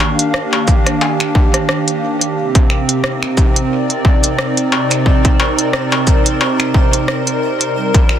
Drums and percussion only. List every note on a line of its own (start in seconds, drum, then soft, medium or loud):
0.00 finger snap soft
0.00 struck metal loud
0.19 closed hi-hat medium
0.34 cross-stick loud
0.53 struck metal medium
0.68 kick loud
0.68 shaker medium
0.86 finger snap soft
0.86 cross-stick medium
0.86 closed hi-hat medium
1.01 struck metal medium
1.20 finger snap medium
1.20 closed hi-hat soft
1.35 kick loud
1.54 cross-stick medium
1.54 closed hi-hat medium
1.69 cross-stick loud
1.88 closed hi-hat medium
2.21 closed hi-hat medium
2.55 kick loud
2.55 closed hi-hat soft
2.70 finger snap soft
2.89 closed hi-hat medium
3.04 cross-stick loud
3.23 finger snap medium
3.37 kick loud
3.37 shaker medium
3.56 closed hi-hat medium
3.90 closed hi-hat soft
4.05 kick loud
4.24 closed hi-hat medium
4.24 shaker medium
4.39 cross-stick loud
4.57 closed hi-hat medium
4.72 struck metal medium
4.91 finger snap soft
4.91 closed hi-hat medium
4.91 shaker medium
5.06 kick medium
5.25 kick loud
5.25 closed hi-hat soft
5.40 struck metal loud
5.59 closed hi-hat medium
5.73 cross-stick loud
5.92 struck metal loud
6.07 kick loud
6.07 shaker medium
6.26 closed hi-hat medium
6.41 struck metal loud
6.60 finger snap medium
6.60 closed hi-hat soft
6.74 kick loud
6.93 closed hi-hat medium
7.08 cross-stick loud
7.27 closed hi-hat soft
7.61 closed hi-hat medium
7.94 kick loud
7.94 closed hi-hat soft
8.09 finger snap soft